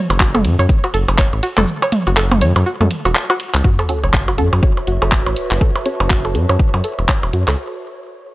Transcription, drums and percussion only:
0.10 cabasa medium
0.10 percussion blips medium
0.20 kick loud
0.20 clap medium
0.20 cabasa soft
0.35 mid tom loud
0.35 percussion blips medium
0.45 closed hi-hat medium
0.45 ride medium
0.59 cabasa medium
0.59 percussion blips soft
0.69 kick loud
0.69 cabasa soft
0.84 percussion blips medium
0.94 closed hi-hat medium
0.94 ride medium
1.08 cabasa medium
1.08 percussion blips medium
1.18 kick loud
1.18 clap medium
1.18 cabasa soft
1.33 percussion blips soft
1.43 closed hi-hat medium
1.43 ride medium
1.57 clap medium
1.57 mid tom medium
1.57 cabasa medium
1.57 percussion blips medium
1.68 cabasa soft
1.82 percussion blips medium
1.92 closed hi-hat medium
1.92 mid tom medium
1.92 ride medium
2.07 cabasa medium
2.07 percussion blips soft
2.17 clap loud
2.17 cabasa soft
2.32 mid tom loud
2.32 percussion blips medium
2.41 closed hi-hat medium
2.41 ride medium
2.56 cabasa medium
2.56 percussion blips medium
2.66 cabasa soft
2.81 mid tom medium
2.81 percussion blips soft
2.91 closed hi-hat medium
2.91 ride medium
3.05 cabasa medium
3.05 percussion blips medium
3.15 clap loud
3.15 cabasa soft
3.30 percussion blips medium
3.40 closed hi-hat medium
3.40 ride medium
3.54 clap medium
3.54 cabasa medium
3.54 percussion blips soft
3.64 kick loud
3.79 percussion blips medium
3.89 closed hi-hat medium
4.04 percussion blips soft
4.14 kick loud
4.14 clap medium
4.28 percussion blips medium
4.38 closed hi-hat medium
4.53 percussion blips medium
4.63 kick loud
4.77 percussion blips soft
4.87 closed hi-hat medium
5.02 percussion blips medium
5.12 kick loud
5.12 clap loud
5.26 percussion blips medium
5.36 closed hi-hat medium
5.51 clap medium
5.51 percussion blips soft
5.61 kick loud
5.76 percussion blips medium
5.86 closed hi-hat loud
6.00 percussion blips medium
6.10 kick loud
6.10 clap medium
6.25 percussion blips soft
6.35 closed hi-hat medium
6.49 percussion blips medium
6.59 kick loud
6.74 percussion blips medium
6.84 closed hi-hat medium
6.99 percussion blips soft
7.09 kick loud
7.09 clap medium
7.23 percussion blips medium
7.33 closed hi-hat medium
7.48 clap medium
7.48 percussion blips medium

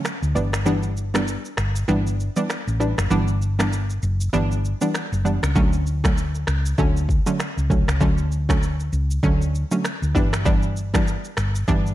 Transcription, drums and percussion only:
0.05 finger snap medium
0.05 cross-stick medium
0.05 shaker medium
0.23 shaker soft
0.36 shaker medium
0.53 finger snap medium
0.53 cross-stick medium
0.53 shaker loud
0.66 shaker medium
0.83 shaker soft
0.97 shaker soft
1.15 finger snap medium
1.15 cross-stick loud
1.15 shaker medium
1.28 shaker medium
1.45 shaker soft
1.57 finger snap medium
1.57 cross-stick medium
1.57 shaker medium
1.76 shaker medium
1.88 shaker soft
2.07 shaker medium
2.20 shaker medium
2.37 shaker loud
2.50 finger snap medium
2.50 cross-stick medium
2.50 shaker medium
2.68 shaker soft
2.81 shaker medium
2.98 finger snap medium
2.98 cross-stick medium
2.98 shaker medium
3.11 shaker medium
3.28 shaker soft
3.42 shaker medium
3.60 finger snap medium
3.60 cross-stick loud
3.60 shaker medium
3.73 shaker medium
3.90 shaker soft
4.03 shaker medium
4.21 shaker medium
4.33 shaker medium
4.52 shaker medium
4.65 shaker medium
4.81 shaker loud
4.94 finger snap medium
4.94 cross-stick medium
4.94 shaker medium
5.13 shaker soft
5.26 shaker medium
5.43 finger snap medium
5.43 cross-stick medium
5.43 shaker medium
5.56 kick loud
5.56 shaker medium
5.73 shaker soft
5.87 shaker medium
6.04 finger snap medium
6.04 kick loud
6.04 cross-stick loud
6.04 shaker medium
6.18 shaker medium
6.35 shaker soft
6.47 finger snap medium
6.47 cross-stick medium
6.47 shaker medium
6.66 shaker medium
6.78 kick medium
6.78 shaker medium
6.97 shaker medium
7.09 kick medium
7.09 shaker medium
7.27 shaker loud
7.40 finger snap medium
7.40 cross-stick medium
7.40 shaker medium
7.58 shaker soft
7.70 kick medium
7.70 shaker medium
7.88 finger snap medium
7.88 cross-stick medium
7.88 shaker medium
8.01 kick loud
8.01 shaker medium
8.18 shaker soft
8.32 shaker medium
8.49 finger snap medium
8.49 kick loud
8.49 cross-stick loud
8.49 shaker medium
8.63 shaker medium
8.80 shaker soft
8.93 shaker medium
9.11 shaker medium
9.23 kick medium
9.23 shaker medium
9.42 shaker medium
9.55 shaker medium
9.71 shaker loud
9.85 finger snap medium
9.85 cross-stick medium
9.85 shaker medium
10.03 shaker soft
10.15 kick medium
10.15 shaker medium
10.33 finger snap medium
10.33 cross-stick medium
10.33 shaker loud
10.46 kick loud
10.46 shaker medium
10.63 shaker soft
10.77 shaker medium
10.94 finger snap medium
10.94 kick loud
10.94 cross-stick loud
10.94 shaker medium
11.08 shaker medium
11.25 shaker soft
11.37 finger snap medium
11.37 cross-stick medium
11.37 shaker medium
11.55 shaker medium
11.68 kick medium
11.68 shaker medium
11.86 shaker medium

